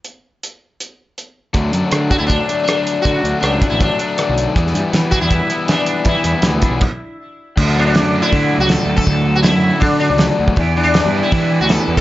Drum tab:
CC |----------------|----------------|----------------|----------------|
HH |x---x---x---x---|x-x-x-x-x-x-x-x-|x-x-x-x-x-x-x-x-|x-x-x-x-x-x-x-x-|
SD |----------------|----r-------r---|----r-------r---|-o--o-------o---|
BD |----------------|o-----o-o-------|o-----o-o-------|o-----o-o-------|

CC |--------x-------|x---------------|----------------|----------------|
HH |x-x-x-x---------|----o---o---o---|o---o---o---o---|o---o---o---o---|
SD |----o-----------|----o-------o---|----o-------o---|----o-------o---|
BD |o-----o-o-------|o-------o------o|o-------o------o|o-------o------o|